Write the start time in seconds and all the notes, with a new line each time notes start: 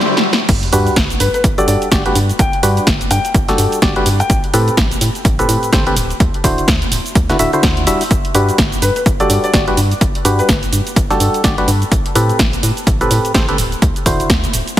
Already playing: C5 E5 F#5 D6, swell
0.01 snare
0.17 snare
0.33 snare
0.49 G1, kick, closed hi-hat, crash, sub drop, shaker
0.63 closed hi-hat
0.73 G2 G3 D4 F#4 G4 B4, open hi-hat, shaker
0.87 closed hi-hat, shaker
0.96 G1, kick, snare, closed hi-hat, shaker
1.10 closed hi-hat, shaker
1.20 G2 B4, open hi-hat, shaker
1.34 B4, closed hi-hat, shaker
1.44 G1, kick, closed hi-hat, shaker
1.58 G3 D4 F#4 G4 A4 D5, closed hi-hat, shaker
1.68 G2 D5, open hi-hat, shaker
1.82 closed hi-hat, shaker
1.92 G1 G3 D4 F#4 G4 D5, kick, snare, closed hi-hat, shaker
2.06 G3 D4 F#4 G4 B4, closed hi-hat
2.15 G2, open hi-hat, shaker
2.29 closed hi-hat, shaker
2.39 G1 G5, kick, closed hi-hat, shaker
2.53 closed hi-hat
2.63 G2 G3 D4 F#4 G4 B4, open hi-hat, shaker
2.77 closed hi-hat, shaker
2.87 G1, kick, snare, closed hi-hat, shaker
3.01 closed hi-hat, shaker
3.11 G2 G5, open hi-hat, shaker
3.25 closed hi-hat, shaker
3.34 G1, kick, closed hi-hat, shaker
3.48 G3 D4 F#4 G4 A4, snare, closed hi-hat, shaker
3.58 G2, open hi-hat, shaker
3.72 closed hi-hat, shaker
3.82 G1 G3 D4 F#4 G4 D5, kick, snare, closed hi-hat, shaker
3.96 G3 D4 F#4 G4 B4, closed hi-hat
4.06 G2, open hi-hat, shaker
4.20 G5, closed hi-hat, shaker
4.30 A1, kick, closed hi-hat, shaker
4.44 closed hi-hat
4.53 A2 C4 G4 A4 B4, open hi-hat, shaker
4.68 closed hi-hat, shaker
4.77 A1, kick, snare, closed hi-hat, shaker
4.91 closed hi-hat, shaker
5.01 A2, open hi-hat, shaker
5.15 closed hi-hat, shaker
5.25 A1, kick, closed hi-hat, shaker
5.39 A2 C4 G4 A4 B4, closed hi-hat, shaker
5.49 A2, open hi-hat, shaker
5.63 closed hi-hat, shaker
5.73 A1 D3 C4 G4 A4 C5, kick, snare, closed hi-hat, shaker
5.87 D3 C4 G4 A4 B4, closed hi-hat
5.96 D1, open hi-hat, shaker
6.10 closed hi-hat, shaker
6.20 D2, kick, closed hi-hat, shaker
6.34 closed hi-hat
6.44 D1 D3 D4 E4 F#4 C5, kick, open hi-hat, shaker
6.58 closed hi-hat, shaker
6.68 D2, kick, snare, closed hi-hat, shaker
6.82 closed hi-hat, shaker
6.92 D1, open hi-hat, shaker
7.06 closed hi-hat, shaker
7.15 D2, kick, closed hi-hat, shaker
7.29 D3 D4 E4 F#4 B4, snare, closed hi-hat, shaker
7.39 D1 D3 D4 E4 F#4 E5, open hi-hat, shaker
7.53 D3 D4 E4 F#4 C5, closed hi-hat, shaker
7.63 D2, kick, snare, closed hi-hat, shaker
7.77 closed hi-hat
7.87 D1 G3 D4 E4 F#4 E5, open hi-hat, shaker
8.01 open hi-hat, shaker
8.11 G1, kick, closed hi-hat, shaker
8.25 closed hi-hat
8.34 G2 G3 D4 F#4 G4 B4, open hi-hat, shaker
8.49 closed hi-hat, shaker
8.58 G1, kick, snare, closed hi-hat, shaker
8.72 closed hi-hat, shaker
8.82 G2 B4, open hi-hat, shaker
8.96 B4, closed hi-hat, shaker
9.06 G1, kick, closed hi-hat, shaker
9.20 G3 D4 F#4 G4 A4 D5, closed hi-hat, shaker
9.30 G2 D5, open hi-hat, shaker
9.44 D5, closed hi-hat, shaker
9.54 G1 G3 D4 F#4 G4 D5, kick, snare, closed hi-hat, shaker
9.68 G3 D4 F#4 G4 B4, closed hi-hat
9.77 G2, open hi-hat, shaker
9.91 closed hi-hat, shaker
10.01 G1, kick, closed hi-hat, shaker
10.15 closed hi-hat
10.25 G2 G3 D4 F#4 G4 B4, open hi-hat, shaker
10.39 B4, closed hi-hat, shaker
10.49 G1, kick, snare, closed hi-hat, shaker
10.63 closed hi-hat, shaker
10.73 G2, open hi-hat, shaker
10.87 closed hi-hat, shaker
10.96 G1, kick, closed hi-hat, shaker
11.10 G3 D4 F#4 G4 A4, snare, closed hi-hat, shaker
11.20 G2, open hi-hat, shaker
11.34 closed hi-hat, shaker
11.44 G1 G3 D4 F#4 G4 D5, kick, snare, closed hi-hat, shaker
11.58 G3 D4 F#4 G4 B4, closed hi-hat
11.68 G2, open hi-hat, shaker
11.82 closed hi-hat, shaker
11.92 A1, kick, closed hi-hat, shaker
12.06 closed hi-hat
12.15 A2 C4 G4 A4 B4, open hi-hat, shaker
12.30 closed hi-hat, shaker
12.39 A1, kick, snare, closed hi-hat, shaker
12.53 closed hi-hat, shaker
12.63 A2, open hi-hat, shaker
12.77 closed hi-hat, shaker
12.87 A1, kick, closed hi-hat, shaker
13.01 A2 C4 G4 A4 B4, closed hi-hat, shaker
13.11 A2, open hi-hat, shaker
13.25 closed hi-hat, shaker
13.34 A1 D3 C4 G4 A4 C5, kick, snare, closed hi-hat, shaker
13.49 D3 C4 G4 A4 B4, closed hi-hat
13.58 D1, open hi-hat, shaker
13.72 closed hi-hat, shaker
13.82 D2, kick, closed hi-hat, shaker
13.96 closed hi-hat, shaker
14.06 D1 D3 D4 E4 F#4 C5, kick, open hi-hat, shaker
14.20 closed hi-hat, shaker
14.30 D2, kick, snare, closed hi-hat, shaker
14.44 closed hi-hat, shaker
14.54 D1, open hi-hat, shaker
14.68 closed hi-hat, shaker